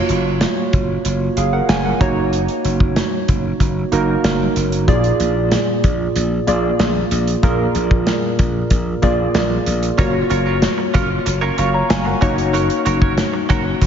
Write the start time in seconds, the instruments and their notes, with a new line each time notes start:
Already playing: synth keys A#3 F4 F#4 C#5
0.09 slap bass F#1, closed hi-hat
0.41 snare, closed hi-hat
0.73 slap bass F#1, kick, closed hi-hat
1.05 slap bass F#1, closed hi-hat
1.37 slap bass F#1, synth keys G#4 F5, closed hi-hat
1.53 synth keys A#4 F#5
1.69 slap bass F#1, synth keys G#5, snare, closed hi-hat
1.85 synth keys A#4 F#5
2.00 slap bass F#1, synth keys A#3 D#4 F#4 C#5, kick, closed hi-hat
2.33 closed hi-hat
2.48 closed hi-hat
2.65 slap bass F#1, closed hi-hat
2.80 kick
2.96 snare, closed hi-hat
3.28 slap bass F#1, kick, closed hi-hat
3.60 slap bass F#1, kick, closed hi-hat
3.92 slap bass F#1, synth keys A#3 D#4 F#4 A#4, closed hi-hat
4.24 slap bass F#1, snare, closed hi-hat
4.56 slap bass F#1, closed hi-hat
4.72 closed hi-hat
4.88 slap bass A#1, synth keys A#2 A#3 F4 G#4 D5, kick, closed hi-hat
5.04 closed hi-hat
5.20 slap bass A#1, closed hi-hat
5.52 snare, closed hi-hat
5.84 slap bass A#1, kick, closed hi-hat
6.16 slap bass A#1, closed hi-hat
6.47 slap bass A#1, synth keys A#3 F4 G#4 D5, closed hi-hat
6.79 slap bass A#1, snare, closed hi-hat
7.11 slap bass A#1, closed hi-hat
7.27 closed hi-hat
7.43 slap bass A#1, synth keys A#2 A#3 F4 G#4 A#4, kick, closed hi-hat
7.75 slap bass A#1, closed hi-hat
7.91 kick
8.07 snare, closed hi-hat
8.39 slap bass A#1, kick, closed hi-hat
8.70 slap bass A#1, kick, closed hi-hat
9.02 slap bass A#1, synth keys A#3 F4 G#4 D5, kick, closed hi-hat
9.35 slap bass A#1, snare, closed hi-hat
9.66 slap bass A#1, closed hi-hat
9.83 closed hi-hat
9.98 slap bass F#1, synth keys A#3 F4 F#4 C#5, clean electric guitar C#4 F4 A#4 C#5, kick, closed hi-hat
10.14 muted clean electric guitar stroke
10.30 slap bass F#1, clean electric guitar C#4 F4 A#4 C#5, closed hi-hat
10.46 clean electric guitar C#4 F4 A#4 C#5
10.62 snare, closed hi-hat
10.78 muted clean electric guitar stroke
10.94 slap bass F#1, clean electric guitar C#4 F4 A#4 C#5, kick, closed hi-hat
11.10 muted clean electric guitar stroke
11.26 slap bass F#1, muted clean electric guitar stroke, closed hi-hat
11.41 clean electric guitar C#4 F4 A#4 C#5
11.57 slap bass F#1, clean electric guitar C#4 F4 A#4 C#5, synth keys F5 C#6, closed hi-hat
11.73 synth keys C#5 A#5, muted clean electric guitar stroke
11.89 slap bass F#1, synth keys G#5, muted clean electric guitar stroke, snare, closed hi-hat
12.05 synth keys A#4 F#5, muted clean electric guitar stroke
12.21 slap bass F#1, synth keys A#3 D#4 F#4 C#5, clean electric guitar C#4 F#4 A#4 C#5, kick, closed hi-hat
12.37 muted clean electric guitar stroke, closed hi-hat
12.53 clean electric guitar C#4 F#4 A#4 C#5, closed hi-hat
12.69 muted clean electric guitar stroke, closed hi-hat
12.85 slap bass F#1, clean electric guitar C#4 F#4 A#4 C#5, closed hi-hat
13.01 clean electric guitar C#4 F#4 A#4 C#5, kick
13.17 snare, closed hi-hat
13.33 muted clean electric guitar stroke
13.49 slap bass F#1, clean electric guitar C#4 F#4 A#4 C#5, kick, closed hi-hat
13.65 muted clean electric guitar stroke
13.81 slap bass F#1, muted clean electric guitar stroke, kick, closed hi-hat